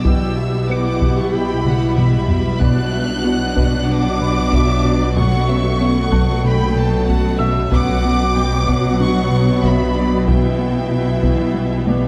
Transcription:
Already playing: double bass section B1, cello section B2, ambient pad B3
0.04 analog synth bass B2, synth arpeggio sound E3, ambient pad G3 E4 B4, french horn section G3 E4, viola section E4 G4, violin section G5 E6, taiko
0.37 synth arpeggio sound B3, analog synth bass B3, violin section E5
0.70 synth arpeggio sound B3, analog synth bass B3, grand piano B4 C#7, violin section F#5 D6
1.01 analog synth bass B2, synth arpeggio sound E3, taiko
1.19 violin section C#6
1.32 analog synth bass B2, synth arpeggio sound G3, violin section G5 B5
1.65 analog synth bass B2, violin section F#5, taiko mid
1.96 analog synth bass B2, synth arpeggio sound E3, violin section E5 B5, taiko low-mid
2.28 analog synth bass B2, synth arpeggio sound G3, taiko low
2.60 double bass section B1, cello section B2, analog synth bass B2, ambient pad F#3 B3 D4, french horn section F#3 D4, viola section F#3 D4, synth arpeggio sound B3, violin section D5 F#6, taiko
2.92 analog synth bass B3, synth arpeggio sound F#4, violin section E5
3.23 analog synth bass B3, synth arpeggio sound F#4, violin section F#5
3.56 analog synth bass B2, synth arpeggio sound B3, taiko
3.88 analog synth bass B2, synth arpeggio sound D4, violin section D6
4.21 analog synth bass B2, grand piano B5
4.52 analog synth bass B2, synth arpeggio sound B3, violin section E5, taiko
4.84 analog synth bass B2, synth arpeggio sound D4, violin section D5
5.16 analog synth bass B2, synth arpeggio sound F#3, viola section A3, ambient pad A3 C#4 C#5, french horn section A4, violin section F#5 C#6, taiko
5.49 analog synth bass B3, synth arpeggio sound C#4, violin section E5
5.80 analog synth bass B3, synth arpeggio sound C#4, violin section F#5
6.12 analog synth bass B2, synth arpeggio sound F#3, grand piano A5 F#6, taiko
6.44 analog synth bass B2, synth arpeggio sound A3, violin section G5 B5
6.76 analog synth bass B2, violin section A5
7.07 analog synth bass B2, synth arpeggio sound F#3, violin section F#5, taiko
7.39 analog synth bass B2, synth arpeggio sound A3, violin section E5, grand piano E6
7.71 double bass section B1, analog synth bass B2, cello section B2, ambient pad F#3 B3 D4 B4, viola section F#3 B3, french horn section F#3 B4, synth arpeggio sound B3, violin section F#5 D6, taiko
8.04 analog synth bass B3, synth arpeggio sound F#4
8.36 synth arpeggio sound F#3, analog synth bass B3, violin section G5
8.67 analog synth bass B2, synth arpeggio sound B3, violin section F#5, taiko
9.00 analog synth bass B2, synth arpeggio sound D4, violin section C#6
9.31 analog synth bass B2
9.63 analog synth bass B2, synth arpeggio sound B3, violin section E5 B5, taiko
9.95 analog synth bass B2, synth arpeggio sound D4, violin section D5
10.27 analog synth bass B2, ambient pad E3 G4, french horn section E3, synth arpeggio sound E3, viola section E4, violin section E5 G5, taiko
10.59 synth arpeggio sound B3, analog synth bass B3
10.91 synth arpeggio sound B3, analog synth bass B3
11.23 analog synth bass B2, synth arpeggio sound E3, taiko
11.54 analog synth bass B2, synth arpeggio sound G3
11.87 analog synth bass B2, grand piano D5 D6, taiko high

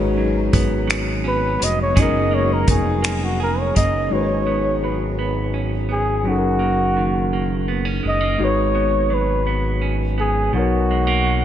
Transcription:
Already playing: analog synth bass G#1, clean electric guitar G#2 D#3 A#3 C#4, tine electric piano G#3 D#4 F#4 G#4 B4 C#5, ambient pad G#3 B3 F#4
0.17 clean electric guitar F#3
0.53 analog synth bass G#1, clean electric guitar B3, kick, closed hi-hat
0.87 clean electric guitar F#3, finger snap, closed hi-hat
1.24 clean electric guitar C#4, flugelhorn B4
1.60 analog synth bass F1, clean electric guitar F#3, closed hi-hat
1.64 flugelhorn D#5
1.82 flugelhorn C#5
1.94 analog synth bass F#1, tine electric piano F#3 C#4, clean electric guitar F#3 G#4, ambient pad F#3 C#4 D#4 G#4 A#4, kick, closed hi-hat
1.98 tine electric piano D#4 G#4 A#4, flugelhorn D#5
2.31 clean electric guitar A#3, flugelhorn C#5
2.53 flugelhorn A#4
2.68 analog synth bass F1, clean electric guitar D#4, flugelhorn G#4, kick, closed hi-hat
3.02 clean electric guitar A#3, finger snap, closed hi-hat
3.24 flugelhorn F#4
3.40 clean electric guitar G#4, flugelhorn A#4
3.60 flugelhorn C#5
3.75 analog synth bass F#1, clean electric guitar A#3, flugelhorn D#5, kick, closed hi-hat
4.09 analog synth bass G#1, clean electric guitar G#2, tine electric piano G#3 D#4 F#4, flugelhorn C#5
4.13 tine electric piano G#4 B4 C5
4.23 tine electric piano C#5
4.47 clean electric guitar B3
4.84 clean electric guitar F#3, flugelhorn B4
5.19 clean electric guitar B3
5.54 clean electric guitar C#4
5.89 clean electric guitar B3, flugelhorn G#4
6.24 analog synth bass F#1, clean electric guitar F#2, tine electric piano F#3 C#4
6.28 tine electric piano D#4 G#4 A4, flugelhorn F#4
6.38 tine electric piano A#4
6.59 clean electric guitar A#3
6.97 clean electric guitar D#3
7.33 clean electric guitar A#3
7.68 clean electric guitar B3
7.85 clean electric guitar C#4
8.03 analog synth bass F#1, clean electric guitar G#3
8.08 flugelhorn D#5
8.21 clean electric guitar A#3
8.38 analog synth bass G#1, clean electric guitar G#2, tine electric piano G#3 D#4 F#4 G#4
8.44 tine electric piano B4 C#5, flugelhorn C#5
8.75 clean electric guitar B3
9.10 clean electric guitar F#3, flugelhorn B4
9.47 clean electric guitar B3
9.81 clean electric guitar C#4
10.18 clean electric guitar B3, flugelhorn G#4
10.52 analog synth bass B1, tine electric piano B2 F#3 D#4, clean electric guitar B2, flugelhorn F#4
10.57 tine electric piano A#4 C#5
10.91 clean electric guitar G#3
11.07 clean electric guitar A#3
11.24 clean electric guitar F#3

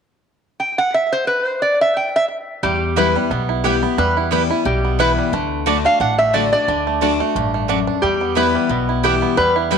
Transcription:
0.60 resonator guitar played with a steel bar G5
0.78 resonator guitar played with a steel bar F#5
0.94 resonator guitar played with a steel bar E5
1.12 resonator guitar played with a steel bar C5
1.27 resonator guitar played with a steel bar B4
1.46 resonator guitar played with a steel bar C5
1.62 resonator guitar played with a steel bar D5
1.81 resonator guitar played with a steel bar E5
1.97 resonator guitar played with a steel bar G5
2.16 resonator guitar played with a steel bar E5
2.63 upright bass E2, steel-string acoustic guitar E2, five-string banjo G3, resonator guitar played with a steel bar G4
2.96 steel-string acoustic guitar E3 G3 B3 E4, mandolin B3 E4 B4 G5, five-string banjo E4, resonator guitar played with a steel bar B4
3.15 five-string banjo G3, steel-string acoustic guitar B3 E4
3.30 upright bass B1, steel-string acoustic guitar B2, five-string banjo B3
3.49 five-string banjo E4
3.64 steel-string acoustic guitar E3 G3 B3 E4, mandolin B3 E4 B4 G5, resonator guitar played with a steel bar G4, five-string banjo G4
3.83 five-string banjo B3, steel-string acoustic guitar B3 E4
3.98 upright bass E2, steel-string acoustic guitar E2, five-string banjo G3, resonator guitar played with a steel bar B4
4.17 five-string banjo E4
4.31 steel-string acoustic guitar E3 G3 B3 E4, five-string banjo G3, mandolin B3 E4 B4 G5
4.49 steel-string acoustic guitar B3 E4, five-string banjo E4
4.65 upright bass B1, steel-string acoustic guitar B2, five-string banjo G3, resonator guitar played with a steel bar G4
4.85 five-string banjo B3
4.99 steel-string acoustic guitar E3 G3 B3 E4, mandolin B3 E4 B4 G5, five-string banjo E4, resonator guitar played with a steel bar B4
5.18 five-string banjo G3
5.33 upright bass D2, five-string banjo A3
5.66 steel-string acoustic guitar D3 A3 D4 F#4, mandolin A3 F#4 D5 A5, five-string banjo D4
5.85 five-string banjo D4, steel-string acoustic guitar D4 F#4, resonator guitar played with a steel bar F5
6.00 upright bass A1, steel-string acoustic guitar A2, five-string banjo D4, resonator guitar played with a steel bar F#5
6.18 five-string banjo A3, resonator guitar played with a steel bar E5
6.33 steel-string acoustic guitar D3 A3 D4 F#4, mandolin A3 F#4 D5 A5, five-string banjo D4, resonator guitar played with a steel bar D5
6.52 five-string banjo D4, steel-string acoustic guitar D4 F#4, resonator guitar played with a steel bar D5
6.68 upright bass D2, steel-string acoustic guitar D3, five-string banjo D4
6.87 five-string banjo A3
7.01 steel-string acoustic guitar D3 A3 D4 F#4, mandolin A3 F#4 D5 A5, five-string banjo D4
7.20 five-string banjo A3, steel-string acoustic guitar D4 F#4
7.35 upright bass A1, steel-string acoustic guitar G2, five-string banjo D4
7.54 five-string banjo A3
7.68 steel-string acoustic guitar F#2, mandolin A3 F#4 D5 A5, five-string banjo D4
7.87 five-string banjo D4
8.02 upright bass E2, steel-string acoustic guitar E2, five-string banjo G3, resonator guitar played with a steel bar G4
8.21 five-string banjo B3
8.35 steel-string acoustic guitar E3 G3 B3 E4, mandolin B3 E4 B4 G5, five-string banjo E4, resonator guitar played with a steel bar B4
8.55 five-string banjo G3
8.69 upright bass B1, steel-string acoustic guitar B2, five-string banjo B3
8.89 five-string banjo E4
9.03 steel-string acoustic guitar E3 G3 B3 E4, mandolin B3 E4 B4 G5, five-string banjo G4, resonator guitar played with a steel bar G4
9.22 five-string banjo B3
9.37 steel-string acoustic guitar E2, upright bass E2, five-string banjo G3, resonator guitar played with a steel bar B4
9.56 five-string banjo E4
9.71 steel-string acoustic guitar E3 G3 B3 E4, five-string banjo G3, mandolin B3 E4 B4 G5

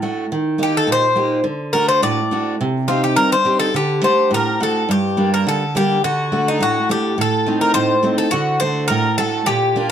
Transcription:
Already playing: steel-string acoustic guitar A2
0.02 steel-string acoustic guitar A3 D4 F#4
0.32 steel-string acoustic guitar D#3
0.58 steel-string acoustic guitar A#3 D#4 G4
0.63 bouzouki G4
0.77 bouzouki A4
0.87 steel-string acoustic guitar A#2
0.92 bouzouki C5
1.16 steel-string acoustic guitar A#3 D#4 G4
1.44 steel-string acoustic guitar D3
1.73 steel-string acoustic guitar A3 D4 F#4, bouzouki A#4
1.88 bouzouki C5
2.02 steel-string acoustic guitar A2, bouzouki D5
2.31 steel-string acoustic guitar A3 D4 F#4
2.61 steel-string acoustic guitar C3
2.88 steel-string acoustic guitar C4 D#4 G4, bouzouki F4
3.04 bouzouki G4
3.16 steel-string acoustic guitar G2, bouzouki A#4
3.32 bouzouki C5
3.45 steel-string acoustic guitar C4 D#4 G4
3.59 bouzouki A4
3.74 steel-string acoustic guitar D3, bouzouki G4
4.03 steel-string acoustic guitar A3 D4 F#5, bouzouki C5
4.31 steel-string acoustic guitar A2, bouzouki A#4
4.60 steel-string acoustic guitar A3 D4 F#4, bouzouki A4
4.89 steel-string acoustic guitar G2, bouzouki G4
5.17 steel-string acoustic guitar G3 A#3 D4
5.34 bouzouki A#4
5.47 steel-string acoustic guitar D3, bouzouki A4
5.75 steel-string acoustic guitar G3 A#3 D4, bouzouki G4
6.04 steel-string acoustic guitar D3, bouzouki F#4
6.32 steel-string acoustic guitar A3 D4 F#4
6.48 bouzouki D#4
6.60 steel-string acoustic guitar A2, bouzouki F#4
6.89 steel-string acoustic guitar A3 D4 F#4, bouzouki G4
7.18 steel-string acoustic guitar A2, bouzouki A4
7.46 steel-string acoustic guitar A3 C4 D#4
7.61 bouzouki A#4
7.74 steel-string acoustic guitar A2, bouzouki C5
8.03 steel-string acoustic guitar A3 C4 D#4
8.18 bouzouki A4
8.31 steel-string acoustic guitar D3, bouzouki F#4
8.60 steel-string acoustic guitar A3 D4 F#4, bouzouki C5
8.88 steel-string acoustic guitar A2, bouzouki A#4
9.18 steel-string acoustic guitar A3 D4 F#4, bouzouki A4
9.46 steel-string acoustic guitar A#2, bouzouki G4
9.76 steel-string acoustic guitar A#3 D4 F4

